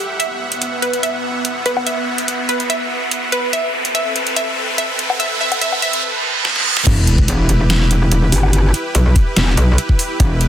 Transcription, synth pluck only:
0.00 0.14 G4 medium
0.20 0.47 E5 medium
0.82 1.02 B4 medium
1.03 1.30 E5 medium
1.66 1.85 B4 medium
1.86 2.13 E5 medium
2.49 2.68 B4 medium
2.70 2.97 E5 medium
3.32 3.52 B4 medium
3.53 3.80 E5 loud
3.95 4.22 E5 loud
4.36 4.63 E5 loud
4.78 5.05 E5 loud
5.20 5.39 E5 loud
5.41 5.60 E5 loud
5.61 5.81 E5 loud
5.82 6.02 E5 loud

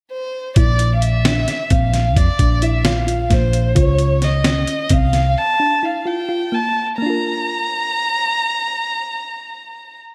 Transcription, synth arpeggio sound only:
0.57 0.86 E4 medium
1.25 1.54 D4 medium
1.71 2.00 C4 medium
2.39 2.54 D4 medium
2.62 2.77 E4 medium
2.85 3.00 F4 medium
3.07 3.22 F4 medium
3.30 3.60 A#3 medium
3.75 4.05 F4 medium
4.45 4.74 C#4 medium
4.91 5.20 C4 medium
5.60 5.75 D4 medium
5.83 5.98 E4 medium
6.06 6.21 F4 medium
6.29 6.44 F4 medium
6.52 6.82 A#3 medium
6.98 9.98 A#3 medium
7.02 10.03 D4 medium
7.02 10.07 F4 medium
7.10 10.10 A#4 medium

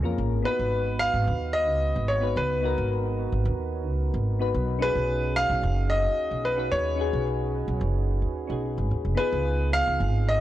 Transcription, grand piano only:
0.45 1.01 B4 medium
0.99 1.56 F5 loud
1.53 2.10 D#5 loud
2.08 2.36 C#5 medium
2.37 2.87 B4 medium
4.82 5.38 B4 loud
5.36 5.92 F5 loud
5.90 6.46 D#5 loud
6.45 6.73 B4 medium
6.72 7.23 C#5 loud
9.17 9.68 B4 medium
9.73 10.29 F5 loud
10.29 10.40 D#5 loud

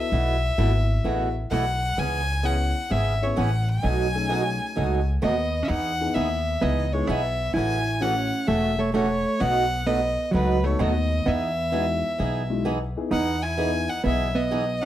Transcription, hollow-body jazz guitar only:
5.23 5.63 B3 medium
5.63 5.68 C#4 medium
5.68 6.15 D#4 medium
6.15 6.60 B3 medium
6.61 6.93 B3 medium
6.93 7.07 G#3 medium
7.07 7.54 B3 medium
7.54 8.01 E4 medium
8.01 8.47 C#4 medium
8.48 8.78 A3 medium
8.79 8.93 A3 medium
8.94 9.40 A3 medium
9.40 9.85 B3 medium
9.87 10.33 B3 medium
10.31 10.64 F#3 medium
10.64 10.79 A3 medium
10.79 11.25 B3 medium
11.26 12.65 B3 medium
13.11 13.43 D#4 medium
13.43 13.89 E4 medium
13.89 14.04 D#4 medium
14.04 14.33 B3 medium
14.35 14.83 B3 medium

